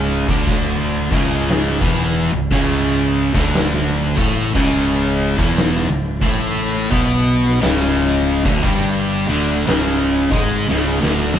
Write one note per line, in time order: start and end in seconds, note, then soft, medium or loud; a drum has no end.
0.00 0.24 C#1 medium
0.00 0.27 C#2 medium
0.00 0.27 C#3 loud
0.28 1.07 D1 medium
0.28 1.09 D2 medium
0.28 1.09 D3 loud
0.28 kick loud
0.47 kick loud
0.47 crash medium
1.12 1.77 C#1 loud
1.12 1.79 C#2 medium
1.12 1.80 C#3 loud
1.12 kick loud
1.49 snare loud
1.49 crash medium
1.81 2.29 E1 loud
1.81 2.31 E2 medium
1.81 2.31 E3 loud
1.81 kick loud
2.33 2.50 C#1 medium
2.33 2.50 C#2 medium
2.51 3.30 C#1 loud
2.51 3.33 C#2 medium
2.51 3.33 C#3 loud
2.51 kick loud
2.51 crash medium
3.34 4.14 D1 loud
3.34 4.15 D2 medium
3.34 4.16 D3 medium
3.34 kick loud
3.34 snare soft
3.54 snare loud
3.54 crash medium
4.17 4.53 A1 loud
4.17 4.54 A2 loud
4.17 4.54 A3 medium
4.17 kick loud
4.55 5.35 C#1 loud
4.55 5.37 C#2 loud
4.55 5.38 C#3 loud
4.55 kick loud
4.55 crash medium
5.38 5.86 E1 loud
5.38 5.87 E2 medium
5.38 5.88 E3 medium
5.38 kick loud
5.56 snare loud
5.56 crash medium
5.89 6.20 C#1 medium
5.89 6.21 C#2 medium
6.21 6.88 A1 medium
6.21 6.90 A2 loud
6.21 6.90 A3 loud
6.21 kick loud
6.59 crash medium
6.92 7.58 B1 medium
6.92 7.61 B2 loud
6.92 7.61 B3 loud
6.92 kick loud
7.45 snare soft
7.61 8.42 C#1 medium
7.61 8.44 C#2 medium
7.61 8.44 C#3 medium
7.61 snare loud
7.61 crash medium
8.45 8.63 D1 medium
8.45 8.63 D2 loud
8.45 8.63 D3 loud
8.45 kick loud
8.64 9.25 G1 medium
8.64 9.27 G2 medium
8.64 9.27 G3 loud
8.64 kick loud
8.64 crash medium
9.28 9.64 D1 medium
9.28 9.65 D2 loud
9.28 9.66 D3 loud
9.66 10.28 C#1 loud
9.66 10.29 C#2 loud
9.66 10.30 C#3 loud
9.66 snare loud
9.66 crash medium
10.30 10.67 G#1 medium
10.30 10.68 G#2 medium
10.30 10.68 G#3 loud
10.30 kick loud
10.69 11.00 C#1 loud
10.69 10.99 C#2 medium
10.69 11.00 C#3 loud
10.69 snare medium
11.00 11.32 D1 medium
11.00 11.31 D2 medium
11.00 11.32 D3 loud
11.00 snare medium
11.33 11.39 F#1 loud
11.33 11.39 F#2 medium
11.33 11.39 F#3 loud
11.33 high tom medium